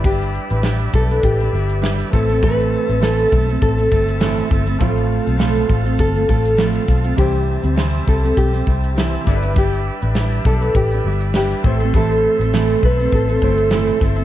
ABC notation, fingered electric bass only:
X:1
M:4/4
L:1/16
Q:"Swing 16ths" 1/4=101
K:Am
V:1 name="Fingered electric bass" clef=bass
G,,,3 A,,,3 B,,,2 A,,,2 G,,,4 A,,,2- | A,,,3 A,,,3 B,,,2 A,,,2 G,,,4 G,,,2 | A,,,3 B,,,3 A,,,2 G,,,2 A,,,4 B,,,2 | C,,3 D,,3 C,,2 B,,,2 C,,4 G,,,2- |
G,,,3 A,,,3 B,,,2 A,,,2 G,,,4 A,,,2- | A,,,3 A,,,3 B,,,2 A,,,2 G,,,4 G,,,2 |]